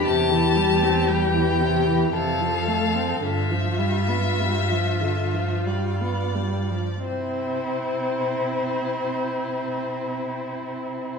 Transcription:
<<
  \new Staff \with { instrumentName = "Violin" } { \time 3/4 \key c \major \tempo 4 = 48 a''4 g''4 f''4 | e''2 d''4 | c''2. | }
  \new Staff \with { instrumentName = "Violin" } { \time 3/4 \key c \major g'2 a'4 | f'2. | e'2. | }
  \new Staff \with { instrumentName = "Viola" } { \clef bass \time 3/4 \key c \major c16 e16 g16 c'16 g16 e16 c16 e16 c16 f16 a16 c'16 | d16 f16 g16 b16 g16 f16 d16 f16 g16 b16 g16 f16 | c'2. | }
  \new Staff \with { instrumentName = "Cello" } { \clef bass \time 3/4 \key c \major e,2 f,4 | g,2. | c2. | }
>>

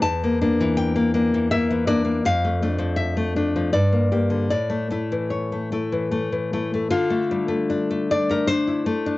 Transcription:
\new Staff \with { instrumentName = "Nylon-string guitar" } { \time 3/4 \key d \minor \tempo 4 = 79 << { a''4 g''4 e''8 d''8 | f''4 e''4 d''4 | d''4 cis''4. r8 | f'4. d''16 bes'16 c''4 | } \\ { e,16 bes16 <bes d'>16 e8 bes16 <bes d'>16 e16 bes16 e16 <bes d'>16 bes16 | f,16 a16 <a d'>16 f8 a16 <a d'>16 f16 g,16 bes16 <bes g'>16 d16 | a,16 a16 <a e'>16 e8 a16 <a e'>16 e16 a16 e16 <a e'>16 a16 | d16 a16 g16 a16 d'16 a16 d'16 a16 d'16 e'16 a16 d'16 | } >> }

